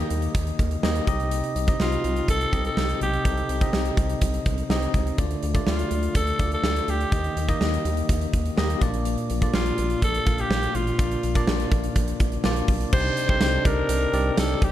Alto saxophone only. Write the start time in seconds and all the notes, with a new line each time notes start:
1.81 F4
2.30 A4
2.66 A4
3.02 G4
5.68 F4
6.17 A4
6.54 A4
6.90 G4
9.54 F4
10.04 A4
10.40 G4
10.75 F4
12.93 C5
13.29 C5
13.67 A#4
14.40 A4
14.64 G4